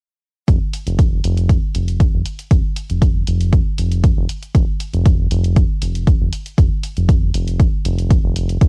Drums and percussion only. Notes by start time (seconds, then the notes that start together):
0.48 kick, closed hi-hat
0.73 open hi-hat
0.87 closed hi-hat
0.99 kick, closed hi-hat
1.24 open hi-hat
1.37 closed hi-hat
1.50 kick, closed hi-hat
1.75 open hi-hat
1.88 closed hi-hat
2.00 kick, closed hi-hat
2.26 open hi-hat
2.39 closed hi-hat
2.51 kick, closed hi-hat
2.77 open hi-hat
2.90 closed hi-hat
3.02 kick, closed hi-hat
3.27 open hi-hat
3.41 closed hi-hat
3.53 kick, closed hi-hat
3.78 open hi-hat
3.92 closed hi-hat
4.04 kick, closed hi-hat
4.29 open hi-hat
4.42 closed hi-hat
4.55 kick, closed hi-hat
4.80 open hi-hat
4.93 closed hi-hat
5.05 kick, closed hi-hat
5.31 open hi-hat
5.44 closed hi-hat
5.56 kick, closed hi-hat
5.82 open hi-hat
5.95 closed hi-hat
6.07 kick, closed hi-hat
6.33 open hi-hat
6.46 closed hi-hat
6.58 kick, closed hi-hat
6.83 open hi-hat
6.97 closed hi-hat
7.09 kick, closed hi-hat
7.34 open hi-hat
7.48 closed hi-hat
7.60 kick, closed hi-hat
7.85 open hi-hat
7.98 closed hi-hat
8.11 kick, closed hi-hat
8.36 open hi-hat
8.49 closed hi-hat
8.61 kick, closed hi-hat, cabasa